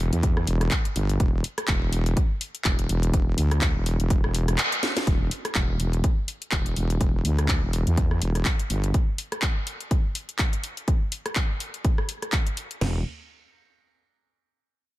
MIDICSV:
0, 0, Header, 1, 3, 480
1, 0, Start_track
1, 0, Key_signature, 1, "minor"
1, 0, Tempo, 483871
1, 1190, Time_signature, 4, 2, 24, 8
1, 14862, End_track
2, 0, Start_track
2, 0, Title_t, "Wobble bass"
2, 0, Program_c, 0, 39
2, 0, Note_on_c, 0, 28, 100
2, 104, Note_off_c, 0, 28, 0
2, 125, Note_on_c, 0, 40, 99
2, 453, Note_off_c, 0, 40, 0
2, 470, Note_on_c, 0, 28, 98
2, 693, Note_off_c, 0, 28, 0
2, 950, Note_on_c, 0, 31, 96
2, 1173, Note_off_c, 0, 31, 0
2, 1190, Note_on_c, 0, 28, 100
2, 1414, Note_off_c, 0, 28, 0
2, 1670, Note_on_c, 0, 28, 99
2, 2134, Note_off_c, 0, 28, 0
2, 2630, Note_on_c, 0, 28, 101
2, 2854, Note_off_c, 0, 28, 0
2, 2870, Note_on_c, 0, 28, 99
2, 3093, Note_off_c, 0, 28, 0
2, 3110, Note_on_c, 0, 28, 97
2, 3334, Note_off_c, 0, 28, 0
2, 3350, Note_on_c, 0, 38, 100
2, 3704, Note_off_c, 0, 38, 0
2, 3725, Note_on_c, 0, 28, 100
2, 3944, Note_off_c, 0, 28, 0
2, 3965, Note_on_c, 0, 28, 98
2, 4184, Note_off_c, 0, 28, 0
2, 4205, Note_on_c, 0, 28, 94
2, 4533, Note_off_c, 0, 28, 0
2, 5030, Note_on_c, 0, 28, 94
2, 5254, Note_off_c, 0, 28, 0
2, 5510, Note_on_c, 0, 28, 96
2, 5974, Note_off_c, 0, 28, 0
2, 6471, Note_on_c, 0, 28, 98
2, 6694, Note_off_c, 0, 28, 0
2, 6710, Note_on_c, 0, 28, 98
2, 6934, Note_off_c, 0, 28, 0
2, 6950, Note_on_c, 0, 28, 96
2, 7174, Note_off_c, 0, 28, 0
2, 7190, Note_on_c, 0, 38, 98
2, 7544, Note_off_c, 0, 38, 0
2, 7566, Note_on_c, 0, 28, 99
2, 7784, Note_off_c, 0, 28, 0
2, 7806, Note_on_c, 0, 40, 94
2, 8134, Note_off_c, 0, 40, 0
2, 8150, Note_on_c, 0, 28, 95
2, 8374, Note_off_c, 0, 28, 0
2, 8630, Note_on_c, 0, 31, 96
2, 8854, Note_off_c, 0, 31, 0
2, 12710, Note_on_c, 0, 28, 94
2, 12934, Note_off_c, 0, 28, 0
2, 14862, End_track
3, 0, Start_track
3, 0, Title_t, "Drums"
3, 126, Note_on_c, 9, 42, 53
3, 225, Note_off_c, 9, 42, 0
3, 230, Note_on_c, 9, 42, 67
3, 231, Note_on_c, 9, 36, 113
3, 329, Note_off_c, 9, 42, 0
3, 330, Note_off_c, 9, 36, 0
3, 366, Note_on_c, 9, 37, 68
3, 465, Note_off_c, 9, 37, 0
3, 470, Note_on_c, 9, 46, 103
3, 569, Note_off_c, 9, 46, 0
3, 606, Note_on_c, 9, 37, 65
3, 606, Note_on_c, 9, 42, 51
3, 705, Note_off_c, 9, 37, 0
3, 705, Note_off_c, 9, 42, 0
3, 705, Note_on_c, 9, 39, 114
3, 710, Note_on_c, 9, 36, 102
3, 710, Note_on_c, 9, 42, 66
3, 804, Note_off_c, 9, 39, 0
3, 809, Note_off_c, 9, 42, 0
3, 810, Note_off_c, 9, 36, 0
3, 846, Note_on_c, 9, 42, 63
3, 945, Note_off_c, 9, 42, 0
3, 950, Note_on_c, 9, 46, 96
3, 1049, Note_off_c, 9, 46, 0
3, 1086, Note_on_c, 9, 42, 54
3, 1185, Note_off_c, 9, 42, 0
3, 1190, Note_on_c, 9, 36, 108
3, 1190, Note_on_c, 9, 42, 68
3, 1289, Note_off_c, 9, 42, 0
3, 1290, Note_off_c, 9, 36, 0
3, 1430, Note_on_c, 9, 46, 101
3, 1529, Note_off_c, 9, 46, 0
3, 1566, Note_on_c, 9, 37, 78
3, 1566, Note_on_c, 9, 42, 53
3, 1664, Note_on_c, 9, 39, 117
3, 1665, Note_off_c, 9, 37, 0
3, 1665, Note_off_c, 9, 42, 0
3, 1670, Note_on_c, 9, 36, 105
3, 1670, Note_on_c, 9, 42, 70
3, 1764, Note_off_c, 9, 39, 0
3, 1769, Note_off_c, 9, 42, 0
3, 1770, Note_off_c, 9, 36, 0
3, 1910, Note_on_c, 9, 46, 88
3, 2009, Note_off_c, 9, 46, 0
3, 2046, Note_on_c, 9, 42, 56
3, 2145, Note_off_c, 9, 42, 0
3, 2150, Note_on_c, 9, 36, 114
3, 2150, Note_on_c, 9, 42, 69
3, 2249, Note_off_c, 9, 42, 0
3, 2250, Note_off_c, 9, 36, 0
3, 2390, Note_on_c, 9, 46, 102
3, 2489, Note_off_c, 9, 46, 0
3, 2526, Note_on_c, 9, 42, 55
3, 2625, Note_off_c, 9, 42, 0
3, 2625, Note_on_c, 9, 39, 116
3, 2630, Note_on_c, 9, 36, 99
3, 2630, Note_on_c, 9, 42, 70
3, 2724, Note_off_c, 9, 39, 0
3, 2729, Note_off_c, 9, 36, 0
3, 2729, Note_off_c, 9, 42, 0
3, 2766, Note_on_c, 9, 42, 61
3, 2865, Note_off_c, 9, 42, 0
3, 2870, Note_on_c, 9, 46, 93
3, 2970, Note_off_c, 9, 46, 0
3, 3006, Note_on_c, 9, 42, 57
3, 3105, Note_off_c, 9, 42, 0
3, 3110, Note_on_c, 9, 36, 110
3, 3111, Note_on_c, 9, 42, 69
3, 3210, Note_off_c, 9, 36, 0
3, 3210, Note_off_c, 9, 42, 0
3, 3351, Note_on_c, 9, 46, 106
3, 3450, Note_off_c, 9, 46, 0
3, 3486, Note_on_c, 9, 37, 79
3, 3486, Note_on_c, 9, 42, 52
3, 3585, Note_off_c, 9, 37, 0
3, 3585, Note_off_c, 9, 42, 0
3, 3585, Note_on_c, 9, 39, 125
3, 3590, Note_on_c, 9, 36, 104
3, 3590, Note_on_c, 9, 42, 69
3, 3684, Note_off_c, 9, 39, 0
3, 3690, Note_off_c, 9, 36, 0
3, 3690, Note_off_c, 9, 42, 0
3, 3830, Note_on_c, 9, 46, 89
3, 3930, Note_off_c, 9, 46, 0
3, 3966, Note_on_c, 9, 42, 56
3, 4065, Note_off_c, 9, 42, 0
3, 4070, Note_on_c, 9, 36, 120
3, 4070, Note_on_c, 9, 42, 71
3, 4170, Note_off_c, 9, 36, 0
3, 4170, Note_off_c, 9, 42, 0
3, 4206, Note_on_c, 9, 37, 68
3, 4305, Note_off_c, 9, 37, 0
3, 4310, Note_on_c, 9, 46, 105
3, 4410, Note_off_c, 9, 46, 0
3, 4446, Note_on_c, 9, 37, 64
3, 4446, Note_on_c, 9, 42, 57
3, 4545, Note_off_c, 9, 37, 0
3, 4545, Note_off_c, 9, 42, 0
3, 4545, Note_on_c, 9, 39, 122
3, 4551, Note_on_c, 9, 42, 72
3, 4644, Note_off_c, 9, 39, 0
3, 4650, Note_off_c, 9, 42, 0
3, 4686, Note_on_c, 9, 42, 65
3, 4785, Note_off_c, 9, 42, 0
3, 4790, Note_on_c, 9, 38, 63
3, 4790, Note_on_c, 9, 46, 93
3, 4890, Note_off_c, 9, 38, 0
3, 4890, Note_off_c, 9, 46, 0
3, 4926, Note_on_c, 9, 38, 78
3, 4926, Note_on_c, 9, 42, 60
3, 5025, Note_off_c, 9, 38, 0
3, 5025, Note_off_c, 9, 42, 0
3, 5030, Note_on_c, 9, 36, 114
3, 5030, Note_on_c, 9, 42, 68
3, 5129, Note_off_c, 9, 42, 0
3, 5130, Note_off_c, 9, 36, 0
3, 5270, Note_on_c, 9, 46, 100
3, 5369, Note_off_c, 9, 46, 0
3, 5406, Note_on_c, 9, 37, 72
3, 5406, Note_on_c, 9, 42, 52
3, 5505, Note_off_c, 9, 37, 0
3, 5505, Note_off_c, 9, 42, 0
3, 5505, Note_on_c, 9, 39, 125
3, 5510, Note_on_c, 9, 36, 104
3, 5510, Note_on_c, 9, 42, 66
3, 5604, Note_off_c, 9, 39, 0
3, 5609, Note_off_c, 9, 42, 0
3, 5610, Note_off_c, 9, 36, 0
3, 5750, Note_on_c, 9, 46, 93
3, 5849, Note_off_c, 9, 46, 0
3, 5886, Note_on_c, 9, 42, 53
3, 5985, Note_off_c, 9, 42, 0
3, 5990, Note_on_c, 9, 36, 113
3, 5990, Note_on_c, 9, 42, 69
3, 6089, Note_off_c, 9, 42, 0
3, 6090, Note_off_c, 9, 36, 0
3, 6230, Note_on_c, 9, 46, 102
3, 6329, Note_off_c, 9, 46, 0
3, 6366, Note_on_c, 9, 42, 54
3, 6465, Note_off_c, 9, 42, 0
3, 6465, Note_on_c, 9, 39, 125
3, 6470, Note_on_c, 9, 42, 67
3, 6471, Note_on_c, 9, 36, 102
3, 6564, Note_off_c, 9, 39, 0
3, 6570, Note_off_c, 9, 36, 0
3, 6570, Note_off_c, 9, 42, 0
3, 6606, Note_on_c, 9, 42, 64
3, 6705, Note_off_c, 9, 42, 0
3, 6710, Note_on_c, 9, 46, 91
3, 6809, Note_off_c, 9, 46, 0
3, 6846, Note_on_c, 9, 42, 56
3, 6945, Note_off_c, 9, 42, 0
3, 6950, Note_on_c, 9, 42, 67
3, 6951, Note_on_c, 9, 36, 114
3, 7050, Note_off_c, 9, 36, 0
3, 7050, Note_off_c, 9, 42, 0
3, 7191, Note_on_c, 9, 46, 108
3, 7290, Note_off_c, 9, 46, 0
3, 7326, Note_on_c, 9, 37, 75
3, 7326, Note_on_c, 9, 42, 50
3, 7425, Note_off_c, 9, 37, 0
3, 7425, Note_off_c, 9, 42, 0
3, 7425, Note_on_c, 9, 39, 122
3, 7431, Note_on_c, 9, 36, 109
3, 7431, Note_on_c, 9, 42, 66
3, 7524, Note_off_c, 9, 39, 0
3, 7530, Note_off_c, 9, 36, 0
3, 7530, Note_off_c, 9, 42, 0
3, 7671, Note_on_c, 9, 46, 91
3, 7770, Note_off_c, 9, 46, 0
3, 7806, Note_on_c, 9, 42, 52
3, 7906, Note_off_c, 9, 42, 0
3, 7911, Note_on_c, 9, 36, 122
3, 7911, Note_on_c, 9, 42, 67
3, 8010, Note_off_c, 9, 36, 0
3, 8010, Note_off_c, 9, 42, 0
3, 8046, Note_on_c, 9, 37, 62
3, 8146, Note_off_c, 9, 37, 0
3, 8150, Note_on_c, 9, 46, 112
3, 8250, Note_off_c, 9, 46, 0
3, 8286, Note_on_c, 9, 37, 59
3, 8286, Note_on_c, 9, 42, 53
3, 8385, Note_off_c, 9, 37, 0
3, 8385, Note_off_c, 9, 42, 0
3, 8385, Note_on_c, 9, 39, 124
3, 8390, Note_on_c, 9, 42, 65
3, 8391, Note_on_c, 9, 36, 106
3, 8484, Note_off_c, 9, 39, 0
3, 8489, Note_off_c, 9, 42, 0
3, 8490, Note_off_c, 9, 36, 0
3, 8526, Note_on_c, 9, 42, 61
3, 8625, Note_off_c, 9, 42, 0
3, 8630, Note_on_c, 9, 46, 99
3, 8730, Note_off_c, 9, 46, 0
3, 8766, Note_on_c, 9, 42, 54
3, 8865, Note_off_c, 9, 42, 0
3, 8870, Note_on_c, 9, 42, 65
3, 8871, Note_on_c, 9, 36, 120
3, 8970, Note_off_c, 9, 36, 0
3, 8970, Note_off_c, 9, 42, 0
3, 9110, Note_on_c, 9, 46, 112
3, 9209, Note_off_c, 9, 46, 0
3, 9246, Note_on_c, 9, 37, 69
3, 9246, Note_on_c, 9, 42, 48
3, 9345, Note_off_c, 9, 37, 0
3, 9345, Note_off_c, 9, 42, 0
3, 9345, Note_on_c, 9, 39, 127
3, 9350, Note_on_c, 9, 42, 61
3, 9351, Note_on_c, 9, 36, 112
3, 9444, Note_off_c, 9, 39, 0
3, 9449, Note_off_c, 9, 42, 0
3, 9450, Note_off_c, 9, 36, 0
3, 9590, Note_on_c, 9, 46, 95
3, 9690, Note_off_c, 9, 46, 0
3, 9726, Note_on_c, 9, 42, 51
3, 9825, Note_off_c, 9, 42, 0
3, 9830, Note_on_c, 9, 42, 62
3, 9831, Note_on_c, 9, 36, 123
3, 9930, Note_off_c, 9, 36, 0
3, 9930, Note_off_c, 9, 42, 0
3, 10070, Note_on_c, 9, 46, 110
3, 10169, Note_off_c, 9, 46, 0
3, 10206, Note_on_c, 9, 42, 50
3, 10305, Note_off_c, 9, 42, 0
3, 10305, Note_on_c, 9, 39, 121
3, 10310, Note_on_c, 9, 36, 112
3, 10310, Note_on_c, 9, 42, 63
3, 10404, Note_off_c, 9, 39, 0
3, 10409, Note_off_c, 9, 42, 0
3, 10410, Note_off_c, 9, 36, 0
3, 10446, Note_on_c, 9, 42, 59
3, 10545, Note_off_c, 9, 42, 0
3, 10550, Note_on_c, 9, 46, 100
3, 10649, Note_off_c, 9, 46, 0
3, 10686, Note_on_c, 9, 42, 54
3, 10785, Note_off_c, 9, 42, 0
3, 10790, Note_on_c, 9, 36, 118
3, 10790, Note_on_c, 9, 42, 63
3, 10889, Note_off_c, 9, 42, 0
3, 10890, Note_off_c, 9, 36, 0
3, 11030, Note_on_c, 9, 46, 110
3, 11129, Note_off_c, 9, 46, 0
3, 11166, Note_on_c, 9, 37, 74
3, 11166, Note_on_c, 9, 42, 47
3, 11265, Note_off_c, 9, 37, 0
3, 11265, Note_off_c, 9, 42, 0
3, 11265, Note_on_c, 9, 39, 118
3, 11271, Note_on_c, 9, 36, 112
3, 11271, Note_on_c, 9, 42, 62
3, 11365, Note_off_c, 9, 39, 0
3, 11370, Note_off_c, 9, 36, 0
3, 11370, Note_off_c, 9, 42, 0
3, 11511, Note_on_c, 9, 46, 93
3, 11610, Note_off_c, 9, 46, 0
3, 11646, Note_on_c, 9, 42, 49
3, 11745, Note_off_c, 9, 42, 0
3, 11751, Note_on_c, 9, 36, 124
3, 11751, Note_on_c, 9, 42, 63
3, 11850, Note_off_c, 9, 36, 0
3, 11850, Note_off_c, 9, 42, 0
3, 11886, Note_on_c, 9, 37, 66
3, 11985, Note_off_c, 9, 37, 0
3, 11990, Note_on_c, 9, 46, 109
3, 12090, Note_off_c, 9, 46, 0
3, 12126, Note_on_c, 9, 37, 58
3, 12126, Note_on_c, 9, 42, 48
3, 12225, Note_on_c, 9, 39, 116
3, 12226, Note_off_c, 9, 37, 0
3, 12226, Note_off_c, 9, 42, 0
3, 12230, Note_on_c, 9, 42, 63
3, 12231, Note_on_c, 9, 36, 109
3, 12324, Note_off_c, 9, 39, 0
3, 12330, Note_off_c, 9, 36, 0
3, 12330, Note_off_c, 9, 42, 0
3, 12366, Note_on_c, 9, 42, 58
3, 12465, Note_off_c, 9, 42, 0
3, 12470, Note_on_c, 9, 46, 95
3, 12570, Note_off_c, 9, 46, 0
3, 12606, Note_on_c, 9, 42, 52
3, 12706, Note_off_c, 9, 42, 0
3, 12711, Note_on_c, 9, 38, 99
3, 12711, Note_on_c, 9, 43, 99
3, 12711, Note_on_c, 9, 49, 84
3, 12810, Note_off_c, 9, 38, 0
3, 12810, Note_off_c, 9, 43, 0
3, 12810, Note_off_c, 9, 49, 0
3, 14862, End_track
0, 0, End_of_file